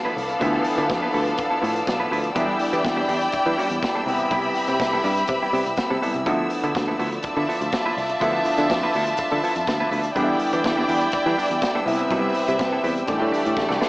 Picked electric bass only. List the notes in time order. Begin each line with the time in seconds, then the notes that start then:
0.16 C2
0.41 D2
0.78 D3
0.90 F2
1.14 D2
1.63 A2
1.87 B1
2.11 D2
2.36 E2
2.73 E3
2.85 E2
3.09 E2
3.34 muted picked electric bass stroke
3.46 E3
3.70 E2
4.06 C2
4.31 C2
4.68 C3
4.80 C2
5.04 G2
5.29 C3
5.53 C3
5.66 C2
5.90 C3
6.15 C2
6.26 D2
6.64 D3
6.75 D2
6.99 D2
7.24 muted picked electric bass stroke
7.37 D3
7.61 D2
7.97 C2
8.21 D2
8.58 D3
8.70 F2
8.95 D2
9.19 muted picked electric bass stroke
9.32 D3
9.56 F2
9.67 D2
9.91 D2
10.16 E2
10.53 E3
10.65 E2
10.88 E2
11.14 muted picked electric bass stroke
11.26 E3
11.50 E2
11.86 C2
12.11 C2
12.48 C3
12.59 C2
12.84 E2
13.08 A1
13.21 A2
13.46 A2
13.57 A1
13.70 C2